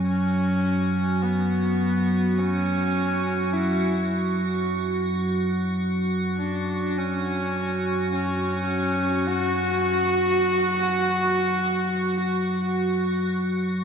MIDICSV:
0, 0, Header, 1, 4, 480
1, 0, Start_track
1, 0, Tempo, 500000
1, 13287, End_track
2, 0, Start_track
2, 0, Title_t, "Ambient pad"
2, 0, Program_c, 0, 92
2, 0, Note_on_c, 0, 66, 81
2, 13287, Note_off_c, 0, 66, 0
2, 13287, End_track
3, 0, Start_track
3, 0, Title_t, "Horsehead fiddle"
3, 0, Program_c, 1, 110
3, 61, Note_on_c, 1, 61, 97
3, 1168, Note_on_c, 1, 59, 86
3, 1183, Note_off_c, 1, 61, 0
3, 2284, Note_on_c, 1, 61, 108
3, 2298, Note_off_c, 1, 59, 0
3, 3386, Note_on_c, 1, 64, 81
3, 3401, Note_off_c, 1, 61, 0
3, 4205, Note_off_c, 1, 64, 0
3, 6122, Note_on_c, 1, 62, 77
3, 6691, Note_on_c, 1, 61, 86
3, 6706, Note_off_c, 1, 62, 0
3, 7793, Note_off_c, 1, 61, 0
3, 7799, Note_on_c, 1, 61, 87
3, 8903, Note_on_c, 1, 66, 100
3, 8917, Note_off_c, 1, 61, 0
3, 12778, Note_off_c, 1, 66, 0
3, 13287, End_track
4, 0, Start_track
4, 0, Title_t, "Synth drone"
4, 0, Program_c, 2, 95
4, 0, Note_on_c, 2, 42, 62
4, 0, Note_on_c, 2, 54, 63
4, 13287, Note_off_c, 2, 42, 0
4, 13287, Note_off_c, 2, 54, 0
4, 13287, End_track
0, 0, End_of_file